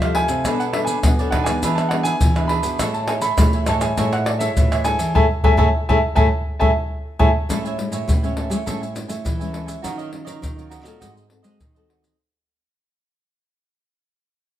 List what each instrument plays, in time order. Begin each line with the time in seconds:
Already playing: nylon-string guitar C3 F3, grand piano E5
0.02 nylon-string guitar A3 E4 G4, cavaquinho A4 C5 F5, pandeiro, tamborim, maracas
0.15 cavaquinho E4 A4 C5 F5, grand piano G#5, pandeiro
0.29 nylon-string guitar C3, pandeiro, maracas
0.45 nylon-string guitar B2 B3 D4 A4 C#5, cavaquinho D4 A4 B4 D5, pandeiro, tamborim, maracas, surdo
0.60 grand piano F#5, pandeiro, maracas
0.73 cavaquinho D4 A4 B4 D5, nylon-string guitar D4 A4 C#5, grand piano E5, pandeiro, tamborim
0.85 cavaquinho D4 A4 B4, grand piano G#5, pandeiro, maracas
0.89 cavaquinho D5
1.03 nylon-string guitar F#3 B3, pandeiro, tamborim, maracas, surdo
1.19 nylon-string guitar D4 A4 C#5, cavaquinho A4 B4 D5, pandeiro, maracas
1.31 nylon-string guitar D#3, cavaquinho D4 A4 B4 D5, grand piano F#5, pandeiro, tamborim, surdo
1.44 nylon-string guitar B3 D4, cavaquinho B4 D5, grand piano G#5, pandeiro, tamborim, maracas
1.48 nylon-string guitar G#4, cavaquinho A4
1.63 nylon-string guitar E3, cavaquinho D4 G#4 B4 E5, pandeiro, maracas, surdo
1.75 cavaquinho B4 E5, grand piano A5, pandeiro, tamborim, maracas
1.80 cavaquinho G#4
1.89 nylon-string guitar B3 D4 G#4, cavaquinho D4 G#4 B4, grand piano F#5, pandeiro, tamborim
1.93 cavaquinho E5
2.03 cavaquinho D4 G#4 B4 E5, grand piano G#5, pandeiro, maracas
2.21 nylon-string guitar B2 E3, pandeiro, maracas, surdo
2.35 nylon-string guitar B3 D4 G#4, cavaquinho G#4 B4 E5, pandeiro, tamborim, maracas
2.48 cavaquinho D4 G#4 B4 E5, grand piano B5, pandeiro
2.63 nylon-string guitar B2, pandeiro, maracas
2.79 nylon-string guitar A2 A3 E4 G#4 C#5, cavaquinho A4 C#5 E5 G#5, pandeiro, tamborim, maracas, surdo
2.94 grand piano A5, pandeiro, maracas
3.08 nylon-string guitar E4 G#4 C#5, cavaquinho A4 C#5 E5 G#5, grand piano G#5, pandeiro, tamborim
3.22 cavaquinho A4 C#5 E5 G#5, grand piano B5, pandeiro, maracas
3.38 nylon-string guitar E3 A3 E4 G#4 C#5, pandeiro, tamborim, maracas, surdo
3.53 cavaquinho C#5 E5 G#5, pandeiro, maracas
3.66 nylon-string guitar A2, cavaquinho A4 C#5 E5 G#5, grand piano A5, pandeiro, tamborim, maracas
3.81 nylon-string guitar E4 G#4 C#5, cavaquinho C#5 E5 G#5, grand piano G#5, pandeiro, tamborim, maracas
3.97 nylon-string guitar A2 A3 E4 G#4 C#5, cavaquinho A4 C#5 E5 G#5, pandeiro, maracas, surdo
4.12 cavaquinho C#5 E5 G#5, grand piano F#5, pandeiro, tamborim, maracas
4.25 cavaquinho A4 C#5 E5 G#5, grand piano D5, pandeiro, tamborim
4.39 nylon-string guitar E4 G#4 C#5, cavaquinho A4 C#5 E5 G#5, grand piano E5, pandeiro, maracas
4.57 nylon-string guitar A2 E3, pandeiro, maracas, surdo
4.72 cavaquinho C#5 E5 G#5, pandeiro, tamborim, maracas
4.84 nylon-string guitar E4 G#4 C#5, cavaquinho A4 C#5 E5 G#5, grand piano G#5, pandeiro, maracas
4.99 nylon-string guitar E3, pandeiro, maracas
5.15 nylon-string guitar A2 E4 G#4 A4, cavaquinho A4 C#5 E5, grand piano E5 G#5 A5, surdo
5.43 nylon-string guitar A2 E4 G#4 A4, cavaquinho A4 C#5 E5, grand piano E5 G#5 A5, surdo
5.57 nylon-string guitar A2 E4 G#4 A4, cavaquinho A4 C#5 E5, grand piano E5 G#5 A5, surdo
5.89 nylon-string guitar A2 E4 G#4 A4, cavaquinho A4 C#5 E5, grand piano E5 G#5 A5, surdo
6.15 nylon-string guitar A2 E4 G#4 A4, cavaquinho A4 C#5 E5, grand piano E5 G#5 A5, surdo
6.60 nylon-string guitar A2 E4 G#4 A4, cavaquinho A4 C#5 E5, grand piano E5 G#5 A5, surdo
7.19 nylon-string guitar A2 E4 G#4 A4, cavaquinho A4 C#5 E5, grand piano E5 G#5 A5, surdo
7.49 nylon-string guitar A2 G#3 C#4 E4, cavaquinho A4 C#5 E5 G#5, pandeiro, maracas, surdo
7.65 cavaquinho C#5 E5 G#5, pandeiro, maracas
7.78 nylon-string guitar G#3 C#4 E4, muted cavaquinho stroke, pandeiro
7.92 nylon-string guitar A2, cavaquinho C#5 E5 G#5, pandeiro, maracas
8.08 nylon-string guitar A2 E3, pandeiro, maracas, surdo
8.23 nylon-string guitar G#3 C#4 E4, cavaquinho C#5 E5 G#5, pandeiro, maracas
8.36 cavaquinho A4 C#5 E5 G#5, pandeiro
8.50 nylon-string guitar G#3 A3 C#4 E4, cavaquinho C#5 E5 G#5, pandeiro, maracas
8.66 nylon-string guitar A2 G#3 C#4 E4, cavaquinho A4 C#5 E5 G#5, pandeiro, maracas, surdo
8.81 cavaquinho C#5 E5 G#5, pandeiro, maracas
8.95 nylon-string guitar G#3 C#4 E4, muted cavaquinho stroke, pandeiro, maracas
9.08 nylon-string guitar A3, cavaquinho C#5 E5 G#5, pandeiro, maracas
9.25 nylon-string guitar E3, pandeiro, maracas, surdo
9.40 nylon-string guitar G#3 C#4 E4, cavaquinho C#5 E5 G#5, pandeiro, maracas
9.53 cavaquinho A4 C#5 E5 G#5, pandeiro
9.66 cavaquinho C#5 E5 G#5, pandeiro, maracas
9.82 nylon-string guitar D#3 F#3 C#4 F4, cavaquinho F#4 A#4 C#5 D#5, pandeiro, maracas, surdo
9.98 cavaquinho A#4 C#5 D#5, pandeiro, maracas
10.11 nylon-string guitar F#3 C#4 F4, muted cavaquinho stroke, pandeiro
10.25 nylon-string guitar D#3, cavaquinho A#4 C#5 D#5, pandeiro, maracas
10.42 nylon-string guitar A#2 D#3, pandeiro, maracas, surdo
10.56 nylon-string guitar F#3 C#4 F4, cavaquinho A#4 C#5 D#5, pandeiro, maracas
10.69 cavaquinho F#4 A#4 C#5 D#5, pandeiro, maracas
10.83 nylon-string guitar A#2 C4 F#4 A4, cavaquinho A#4 C#5 D#5, pandeiro, maracas
11.00 nylon-string guitar G#2 G#3, cavaquinho F#4 G#4 C5 D#5, pandeiro, maracas, surdo
11.17 cavaquinho G#4 C5, pandeiro, maracas
11.28 nylon-string guitar C4 F#4 A4, muted cavaquinho stroke, pandeiro
11.43 nylon-string guitar G#3, cavaquinho G#4 C5 D#5, pandeiro, maracas
11.60 nylon-string guitar D#3, pandeiro, maracas, surdo
11.75 nylon-string guitar C4 F#4 A4, cavaquinho G#4 C5 D#5, pandeiro, maracas
11.88 cavaquinho F#4 G#4 C5 D#5, pandeiro
12.02 cavaquinho G#4 C5 D#5, pandeiro, maracas